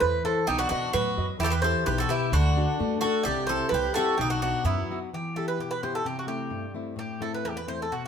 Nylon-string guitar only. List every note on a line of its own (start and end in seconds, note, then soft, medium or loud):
0.00 0.46 E3 medium
0.00 0.15 E4 soft
0.00 0.15 A4 soft
0.00 0.15 C5 medium
0.25 0.43 E4 soft
0.25 0.44 A4 soft
0.25 0.43 C5 medium
0.48 0.93 B3 medium
0.70 1.08 F#4 soft
0.70 1.08 B4 soft
0.70 1.08 D#5 medium
0.94 1.39 F#3 medium
1.17 1.36 F#4 soft
1.17 1.36 B4 soft
1.17 1.36 D#5 medium
1.41 1.86 E3 medium
1.64 2.01 E4 soft
1.64 2.01 G4 soft
1.64 2.02 B4 soft
1.87 2.32 B2 medium
2.09 2.28 E4 soft
2.09 2.28 G4 soft
2.09 2.28 B4 medium
2.33 2.78 D3 medium
2.57 2.94 D4 soft
2.57 2.94 F#4 soft
2.57 2.94 A4 medium
2.80 3.25 A3 medium
3.04 3.22 D4 soft
3.04 3.22 F#4 soft
3.04 3.23 A4 medium
3.28 3.72 C3 medium
3.49 3.86 C4 soft
3.49 3.87 E4 soft
3.49 3.87 G4 medium
3.73 4.18 G3 medium
3.97 4.15 C4 soft
3.97 4.15 E4 soft
3.97 4.15 G4 medium
4.19 4.64 B2 medium
4.42 4.79 B3 soft
4.42 4.80 D#4 soft
4.42 4.80 F#4 medium
4.65 5.11 F#3 medium
4.91 5.09 B3 soft
4.91 5.09 D#4 soft
4.91 5.09 F#4 medium
5.14 5.58 E3 medium
5.36 5.73 B3 soft
5.36 5.73 E4 soft
5.36 5.74 G4 soft
5.59 6.04 B2 medium
5.83 6.01 B3 soft
5.83 6.02 E4 soft
5.83 6.02 G4 soft
6.05 6.51 C3 medium
6.27 6.65 A3 soft
6.27 6.66 C4 soft
6.27 6.66 E4 soft
6.50 6.96 G2 medium
6.74 6.93 A3 soft
6.74 6.93 C4 soft
6.74 6.94 E4 soft
6.96 7.43 A2 medium
7.21 7.58 A3 soft
7.21 7.59 C4 soft
7.21 7.59 E4 soft
7.44 7.90 E2 medium
7.67 7.86 A3 soft
7.67 7.87 C4 soft
7.67 7.87 E4 soft
7.92 8.08 B2 medium